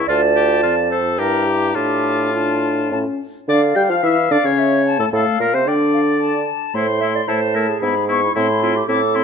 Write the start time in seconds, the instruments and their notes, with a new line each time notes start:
0.08 bassoon D2, oboe F4, french horn F4, clarinet D5, flute A5
0.36 oboe G4
0.63 bassoon F2, oboe F4
0.91 oboe A4, clarinet C5
1.19 bassoon G2, french horn E4, oboe G4, clarinet A#4, flute A#5
1.46 clarinet G4
1.75 bassoon A2, french horn D4, oboe F4, clarinet G4, flute A5
2.33 french horn D4, clarinet F4, flute A5
2.91 bassoon A2, french horn C#4, flute A5
3.48 bassoon D3, french horn D4, clarinet D5, oboe D5, flute F5
3.75 bassoon G3, french horn G4, clarinet G5, oboe G5
3.89 bassoon F3, french horn F4, clarinet F5, oboe F5
4.03 bassoon E3, french horn E4, clarinet E5, oboe E5
4.30 bassoon D3, french horn D4, clarinet D5, oboe D5
4.44 bassoon C#3, french horn C#4, clarinet C#5, oboe C#5
4.58 flute E5
4.86 flute A5
4.99 bassoon A2, french horn A3, oboe A4, clarinet A4
5.13 bassoon A2, french horn A3, clarinet A4, oboe A4, flute F5
5.40 bassoon A#2, french horn A#3, clarinet A#4, oboe A#4
5.54 bassoon C3, french horn C4, oboe C5, clarinet C5
5.67 bassoon D3, french horn D4, clarinet D5, oboe D5, flute G5
5.93 flute F5
6.20 flute A5
6.74 bassoon A2, french horn A3, oboe E4, clarinet C5, flute C6
7.01 french horn A3, oboe E4, clarinet E5
7.15 clarinet D5
7.27 bassoon A2, french horn A3, oboe E4, clarinet C5, flute A5
7.55 french horn A3, oboe E4, clarinet A#4
7.68 clarinet G#4
7.82 bassoon G#2, french horn B3, oboe E4, flute B5
8.09 french horn B3, oboe E4, flute C#6
8.23 clarinet E4
8.35 bassoon A2, french horn C4, clarinet E4, oboe E4, flute C6
8.62 french horn C4, oboe E4, clarinet F4
8.76 clarinet G4
8.88 bassoon A2, french horn C4, oboe E4, clarinet A4, flute D6
9.15 french horn C4, oboe E4, flute C6